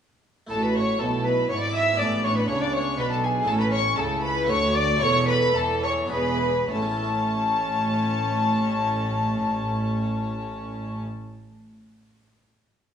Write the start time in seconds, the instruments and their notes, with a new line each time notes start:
0.47 harpsichord A3 E4 A4, violin section A4, violin A4
0.51 double bass section A1, harpsichord A2, cello section A2, viola section F#4, violin section A5
0.62 violin B4, violin section B4 B5
0.75 violin section C#5 C#6, violin C#5
0.99 double bass section B1, harpsichord B2, cello section B2, viola section E4, violin section A4 A5, violin A4
1.24 violin B4, violin section B4 B5
1.49 double bass section G#1, harpsichord G#2, cello section G#2, viola section E4, violin C#5, violin section C#5 C#6
1.61 violin section D5 D6, violin D5
1.74 violin section E5 E6, violin E5
1.94 harpsichord B3 E4 G#4
1.99 double bass section A1, harpsichord A2, cello section A2, viola section D4, violin section D5 D6, violin D5
2.24 violin C#5, violin section C#5 C#6
2.36 violin B4, violin section B4 B5
2.48 double bass section C#2, harpsichord C#3, cello section C#3, violin C#5, violin section C#5 C#6
2.60 violin D5, violin section D5 D6
2.73 violin C#5, violin section C#5 C#6
2.98 double bass section B1, harpsichord B2, cello section B2, violin B4, violin section B4 B5
3.11 violin A4, violin section A4 A5
3.23 violin G#4, violin section G#4 G#5
3.42 harpsichord A3 E4 A4
3.47 double bass section A1, harpsichord A2, cello section A2, viola section C#4, violin section A4 A5, violin A4
3.60 violin section B4 B5, violin B4
3.72 violin C#5, violin section C#5 C#6
3.97 double bass section C#2, harpsichord C#3, cello section C#3, viola section E4, violin A4, violin section A4 A5
4.22 violin section B4 B5, violin B4
4.44 harpsichord A3 F#4 A4, violin section C#6
4.48 double bass section D2, harpsichord D2, cello section D2, viola section F#4, violin C#5, violin section C#5
4.74 violin D5, violin section D5 D6
4.96 harpsichord A3 E4 A4, violin section C#6
5.00 double bass section E1, cello section E2, harpsichord E2, viola section A4, violin section C#5, violin C#5
5.28 violin B4, violin section B4 B5
5.54 double bass section E2, harpsichord E3, cello section E3, violin A4, violin section A4 A5
5.83 violin C#5, violin section C#5 C#6
6.06 harpsichord B3 D4 G#4
6.10 double bass section E1, harpsichord E2, cello section E2, viola section G#4, violin B4, violin section B4 B5
6.68 double bass section A1, harpsichord A2, cello section A2, viola section C#4, violin C#5, violin section A5
6.75 harpsichord A3
6.82 harpsichord C#4
6.89 harpsichord E4
6.97 harpsichord A4
7.04 harpsichord E5